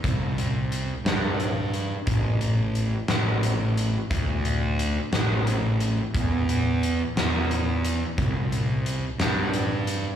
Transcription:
<<
  \new Staff \with { instrumentName = "Picked electric bass" } { \clef bass \time 6/8 \key c \lydian \tempo 4. = 59 c,4. g,4. | a,,4. a,,4. | d,4. a,,4. | e,4. e,4. |
c,4. g,4. | }
  \new DrumStaff \with { instrumentName = "Drums" } \drummode { \time 6/8 <hh bd>8 hh8 hh8 <hh sn>8 hh8 hh8 | <hh bd>8 hh8 hh8 <hh sn>8 hh8 hh8 | <hh bd>8 hh8 hh8 <hh sn>8 hh8 hh8 | <hh bd>8 hh8 hh8 <hh sn>8 hh8 hh8 |
<hh bd>8 hh8 hh8 <hh sn>8 hh8 hh8 | }
>>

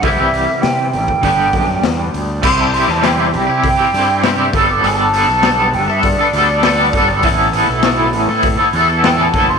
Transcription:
<<
  \new Staff \with { instrumentName = "Flute" } { \time 4/4 \key c \major \tempo 4 = 100 e''4 g''8 g''2 r8 | c'''16 a''16 c'''16 a''16 g''16 e''16 g''8 g''4 r8 e'''16 d'''16 | a''4. g''16 e''16 d''2 | r2. g''16 a''8 c'''16 | }
  \new Staff \with { instrumentName = "Clean electric guitar" } { \time 4/4 \key c \major <c e g e' g'>2 <g, d g b d' g'>2 | <c g c' e' g'>8 <g c' e' g'>16 <c' e' g'>16 <c g c' e' g'>8. <c' e' g'>8 <c' e' g'>16 <g c' e' g'>16 <c' e' g'>16 <c g c' e' g'>8 <g b d' a'>16 <b d' a'>16 | <g b d' a'>8 <g b d' a'>16 <b d' a'>16 <g b d' a'>8. <b d' a'>8 <b d' a'>16 <g b d' a'>16 <b d' a'>16 <g b d' a'>8 <g b d' a'>16 <b d' a'>16 | <a, e b e' a'>8 <e b e' a'>16 <b e' a'>16 <a, e b e' a'>8. <b e' a'>8 <b e' a'>16 <e b e' a'>16 <b e' a'>16 <a, e b e' a'>8 <e b e' a'>16 <e' a'>16 | }
  \new Staff \with { instrumentName = "Fingered electric bass" } { \clef bass \time 4/4 \key c \major c,16 c,8 r16 c8 a,,16 r16 g,,8 fis,8 e,8 d,8 | c,8. e,8. c,16 c8 r16 g,4 g,,8 | g,,8. b,,8. g,,16 g,8 r16 d,4 g,,8 | a,,8. b,,8. a,,16 a,8 r16 e,4 fis,,8 | }
  \new DrumStaff \with { instrumentName = "Drums" } \drummode { \time 4/4 <hho bd>8 hho8 <hho sn>8 hho16 bd16 <hho bd>8 <hho bd>8 <hho sn>8 hho8 | <cymc bd>8 hho16 sn16 <hho sn>8 hho8 <hho bd>8 hho8 <hho sn>8 <hho bd>8 | hho8 hho8 <hho sn>8 hho8 <hho bd>8 hho8 <hho sn>8 <hho bd>8 | <hho bd>8 hho8 <hho sn>8 hho8 <hho bd>8 hho8 <hho sn>8 <hho bd>8 | }
>>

